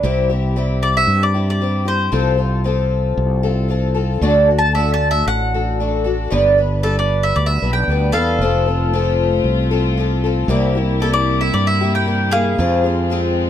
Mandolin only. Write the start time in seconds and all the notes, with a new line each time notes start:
0.83 D5
0.97 E5
1.23 D5
1.50 D5
1.88 C5
4.59 A5
4.75 E5
4.94 A5
5.11 E5
5.28 F#5
6.83 A4
6.99 D5
7.23 E5
7.36 D5
7.46 E5
7.73 G5
8.12 A4 F5
11.02 A4
11.13 D5
11.41 E5
11.54 D5
11.67 E5
11.95 G5
12.31 G#4 F5